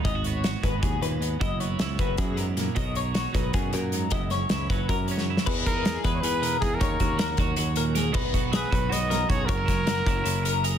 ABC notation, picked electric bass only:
X:1
M:7/8
L:1/8
Q:1/4=156
K:B
V:1 name="Picked electric bass" clef=bass
G,,,3 G,,, D,, D,,2 | F,,,2 C,, F,,, F,,3 | B,,,3 B,,, F,, F,,2 | F,,,2 C,, F,,, F,,3 |
E,,3 E,, E,,2 E,, | D,, D,,2 D,, D,,3 | B,,,3 B,,, B,,,2 B,,, | F,,, F,,,2 F,,, F,,,3 |]